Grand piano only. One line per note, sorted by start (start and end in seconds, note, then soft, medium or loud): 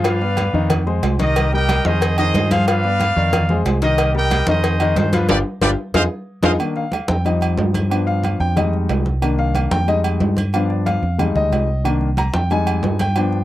0.05 0.18 F3 medium
0.05 0.18 F4 medium
0.05 0.19 F5 medium
0.21 0.48 B3 medium
0.21 0.48 B4 medium
0.21 0.48 D5 medium
0.54 0.81 D#3 loud
0.54 0.81 D#4 medium
0.54 0.81 D#5 medium
0.87 1.14 G#3 medium
0.87 1.14 G#4 medium
0.87 1.14 C5 medium
1.19 1.46 D#3 loud
1.19 1.47 D#4 loud
1.19 1.47 D#5 loud
1.53 1.66 G3 medium
1.53 1.67 G4 medium
1.53 1.67 A#4 medium
1.69 1.82 G3 medium
1.69 1.82 G4 medium
1.69 1.83 A#4 medium
1.86 2.12 D#3 loud
1.86 2.13 D#4 medium
1.86 2.13 D#5 medium
2.19 2.45 D#3 medium
2.19 2.46 D#4 medium
2.19 2.46 D#5 loud
2.51 2.64 F3 loud
2.51 2.65 F4 loud
2.51 2.65 F5 loud
2.68 2.81 F3 medium
2.68 2.81 F4 medium
2.68 2.81 F5 medium
2.84 3.11 B3 medium
2.84 3.11 B4 medium
2.84 3.11 D5 medium
3.16 3.43 D#3 medium
3.16 3.43 D#4 medium
3.16 3.44 D5 medium
3.50 3.76 G#3 medium
3.50 3.76 G#4 medium
3.50 3.77 C5 medium
3.82 4.09 D#3 loud
3.82 4.09 D#4 loud
3.82 4.09 D#5 medium
4.15 4.28 G3 medium
4.15 4.28 G4 medium
4.15 4.28 A#4 medium
4.31 4.45 G3 medium
4.31 4.45 G4 medium
4.31 4.45 A#4 medium
4.48 4.75 D#3 medium
4.48 4.75 D#4 medium
4.48 4.75 D#5 loud
4.81 5.08 D#3 loud
4.81 5.08 D#4 loud
4.81 5.08 D#5 medium
5.13 5.26 F3 medium
5.13 5.27 F4 loud
5.13 5.27 F5 loud
5.29 5.40 D4 loud
5.29 5.40 F4 loud
5.29 5.40 G4 loud
5.62 5.73 D4 loud
5.62 5.72 F4 loud
5.62 5.72 G4 loud
5.94 6.05 D#4 loud
5.94 6.05 F4 loud
5.94 6.05 G#4 loud
6.43 6.54 D#4 loud
6.43 6.54 F4 loud
6.43 6.54 G#4 loud
6.59 6.82 D#3 medium
6.59 6.82 A#3 medium
6.59 6.82 D4 medium
6.76 7.07 F5 medium
7.09 7.25 G5 medium
7.25 7.88 F3 medium
7.25 7.88 G3 medium
7.25 7.88 D#4 medium
7.25 7.42 D#5 medium
7.90 8.53 F3 medium
7.90 8.53 B3 medium
7.90 8.54 D4 medium
8.07 8.38 F5 medium
8.40 8.57 G5 loud
8.56 9.03 G3 medium
8.56 9.04 G#3 medium
8.56 9.04 D#4 medium
8.56 8.73 D#5 medium
9.22 9.85 D#3 medium
9.22 9.85 A#3 soft
9.22 9.85 D4 medium
9.39 9.70 F5 medium
9.71 9.88 G5 loud
9.88 10.35 G3 medium
9.88 10.35 G#3 medium
9.88 10.36 D#4 medium
9.88 9.98 D#5 medium
10.54 11.01 F3 medium
10.54 11.01 B3 medium
10.54 11.01 D4 medium
10.54 10.70 F5 medium
10.70 10.86 D5 medium
10.86 11.32 F5 medium
11.18 11.66 G3 medium
11.18 11.66 G#3 medium
11.18 11.66 D#4 medium
11.36 11.82 D#5 medium
11.84 12.07 D#3 medium
11.84 12.07 A#3 soft
11.84 12.07 D4 medium
12.19 12.34 A#5 medium
12.35 12.50 G5 medium
12.51 12.98 G3 medium
12.51 12.98 G#3 medium
12.51 12.98 D#4 medium
12.51 12.97 G#5 loud
13.01 13.44 G5 loud
13.16 13.38 F3 medium
13.16 13.38 B3 soft
13.16 13.39 D4 medium